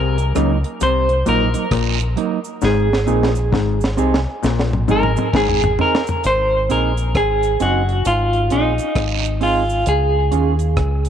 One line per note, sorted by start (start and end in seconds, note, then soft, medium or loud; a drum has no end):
0.00 0.33 C2 medium
0.00 0.17 C3 medium
0.00 0.82 A#4 medium
0.18 closed hi-hat medium
0.18 cabasa soft
0.35 0.63 C#2 loud
0.35 0.52 C#3 medium
0.35 0.57 F#3 medium
0.35 0.57 A#3 medium
0.35 0.57 D#4 loud
0.35 cross-stick medium
0.35 closed hi-hat medium
0.35 cabasa medium
0.64 closed hi-hat soft
0.80 1.24 C2 loud
0.80 1.08 C3 medium
0.80 1.28 C5 medium
0.80 closed hi-hat medium
0.80 cabasa medium
1.09 closed hi-hat soft
1.26 1.53 A#1 medium
1.26 1.43 A#2 medium
1.26 1.47 F#3 medium
1.26 1.48 A#3 medium
1.26 1.48 D#4 medium
1.26 2.67 A#4 loud
1.26 closed hi-hat medium
1.26 cabasa medium
1.54 1.65 F#3 medium
1.54 1.65 A#3 medium
1.54 1.64 D#4 medium
1.54 closed hi-hat medium
1.54 cabasa medium
1.71 2.14 A#1 medium
1.71 1.99 A#2 medium
1.71 kick loud
1.71 cross-stick loud
1.71 closed hi-hat medium
1.71 long guiro medium
2.00 cabasa soft
2.16 2.38 F#3 medium
2.16 2.38 A#3 medium
2.16 2.39 D#4 medium
2.16 closed hi-hat medium
2.44 cabasa medium
2.61 3.05 G#1 loud
2.61 2.89 G#2 loud
2.61 5.31 G#4 medium
2.61 snare medium
2.61 cabasa medium
2.93 snare medium
3.06 3.51 A#1 medium
3.06 3.34 A#2 medium
3.06 3.28 C4 medium
3.06 3.29 D#4 medium
3.06 3.29 G#4 medium
3.06 cabasa medium
3.23 snare medium
3.35 cabasa medium
3.52 3.96 G#1 medium
3.52 3.79 G#2 medium
3.52 kick loud
3.52 snare medium
3.81 snare medium
3.81 cabasa medium
3.97 4.25 C2 medium
3.97 4.14 C3 medium
3.97 4.19 C4 medium
3.97 4.19 D#4 medium
3.97 4.20 G#4 loud
3.97 cabasa medium
4.14 snare medium
4.43 4.86 A#1 loud
4.43 4.70 A#2 medium
4.43 snare medium
4.43 cabasa medium
4.59 snare medium
4.73 mid tom medium
4.88 5.15 G#1 medium
4.88 5.05 G#2 medium
4.88 5.10 C4 medium
4.88 5.10 D#4 medium
4.88 5.10 G#4 medium
4.88 5.36 A#4 medium
4.88 mid tom medium
4.88 cabasa soft
5.03 mid tom medium
5.16 5.27 C4 medium
5.16 5.27 D#4 medium
5.16 5.26 G#4 medium
5.16 mid tom medium
5.16 cabasa medium
5.33 5.77 G#1 medium
5.33 5.61 G#2 medium
5.33 5.81 G#4 medium
5.33 kick loud
5.33 snare medium
5.33 long guiro medium
5.49 floor tom medium
5.62 floor tom loud
5.62 cabasa soft
5.79 6.00 C4 medium
5.79 6.01 D#4 medium
5.79 6.01 G#4 medium
5.79 6.22 A#4 loud
5.79 floor tom medium
5.95 snare loud
6.07 floor tom medium
6.07 cabasa medium
6.24 6.67 G#1 loud
6.24 6.71 C5 loud
6.24 closed hi-hat medium
6.24 cabasa medium
6.69 7.13 A#1 medium
6.69 6.91 C4 medium
6.69 6.91 D#4 medium
6.69 6.92 G#4 medium
6.69 7.16 A#4 medium
6.69 closed hi-hat medium
6.69 cabasa medium
6.97 closed hi-hat soft
6.97 cabasa medium
7.15 7.58 G#1 medium
7.15 7.62 G#4 loud
7.15 kick loud
7.15 cross-stick loud
7.15 closed hi-hat medium
7.43 closed hi-hat soft
7.43 cabasa soft
7.60 8.03 F#1 loud
7.60 7.81 C4 medium
7.60 7.82 D#4 medium
7.60 8.07 F#4 medium
7.60 7.82 G#4 medium
7.60 closed hi-hat medium
7.60 cabasa medium
7.89 closed hi-hat soft
8.05 8.48 G#1 loud
8.05 8.53 F4 medium
8.05 closed hi-hat medium
8.05 cabasa medium
8.33 closed hi-hat soft
8.50 8.78 A#1 medium
8.50 8.72 C4 medium
8.50 8.72 D#4 medium
8.50 9.45 D#4 medium
8.50 8.73 G#4 medium
8.50 closed hi-hat medium
8.50 cabasa soft
8.78 closed hi-hat soft
8.78 cabasa medium
8.95 9.82 G#1 medium
8.95 kick loud
8.95 cross-stick loud
8.95 closed hi-hat medium
8.95 long guiro medium
9.25 cabasa soft
9.41 9.62 C4 medium
9.41 9.63 D#4 medium
9.41 9.84 F4 medium
9.41 9.63 G#4 medium
9.41 open hi-hat medium
9.69 cabasa medium
9.86 10.29 C#2 loud
9.86 11.09 G#4 medium
9.86 closed hi-hat medium
9.86 cabasa medium
10.31 10.75 D#2 medium
10.31 10.53 C#4 medium
10.31 10.53 F4 medium
10.31 10.54 G#4 medium
10.31 closed hi-hat medium
10.31 cabasa medium
10.59 closed hi-hat soft
10.59 cabasa medium
10.77 11.09 C#2 medium
10.77 kick medium
10.77 cross-stick loud
10.77 closed hi-hat medium
11.05 closed hi-hat medium
11.05 cabasa soft